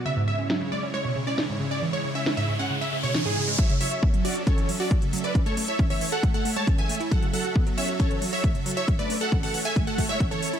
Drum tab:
HH |--------------------------------|--------------------------------|x-x-o-x---x-o-x-x-x-o-o-x-x-oxx-|x-x-o-x-x-o-o-x-x-x-o-x-x-x-o-x-|
SD |--------o---------------o-------|--------o---------------o-------|--------------------------------|--------------------------------|
BD |--------------------------------|--------------------------------|o-------o-------o-------o-------|o-------o-------o-------o-------|

HH |x-x-o-x---x-o-x-x-x-o-o-x-x-oxx-|x-x-o-x-x-o-o-x-x-x-o-x-x-x-o-x-|
SD |--------------------------------|--------------------------------|
BD |o-------o-------o-------o-------|o-------o-------o---o---o-------|